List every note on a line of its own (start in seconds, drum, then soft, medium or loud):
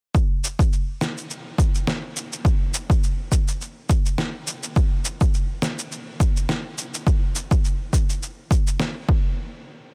0.15 kick loud
0.15 shaker soft
0.44 shaker medium
0.59 kick medium
0.59 shaker soft
0.73 shaker soft
1.01 snare medium
1.01 shaker medium
1.17 shaker soft
1.30 shaker soft
1.58 kick medium
1.58 shaker medium
1.75 shaker soft
1.87 snare medium
1.87 shaker soft
2.16 shaker medium
2.33 shaker soft
2.45 kick loud
2.45 shaker soft
2.74 shaker medium
2.90 kick loud
2.90 shaker soft
3.03 shaker soft
3.32 kick medium
3.32 shaker medium
3.48 shaker soft
3.61 shaker soft
3.90 kick loud
3.90 shaker medium
4.06 shaker soft
4.18 snare medium
4.18 shaker soft
4.47 shaker medium
4.63 shaker soft
4.76 kick loud
4.76 shaker soft
5.05 shaker medium
5.21 kick loud
5.21 shaker soft
5.34 shaker soft
5.62 snare medium
5.62 shaker medium
5.79 shaker soft
5.92 shaker soft
6.20 kick loud
6.20 shaker medium
6.36 shaker soft
6.49 snare medium
6.49 shaker soft
6.78 shaker medium
6.94 shaker soft
7.07 kick loud
7.07 shaker soft
7.35 shaker medium
7.51 kick loud
7.51 shaker soft
7.65 shaker soft
7.93 kick medium
7.93 shaker medium
8.09 shaker soft
8.23 shaker soft
8.51 kick loud
8.51 shaker medium
8.67 shaker soft
8.80 snare medium
8.80 shaker soft
9.09 kick loud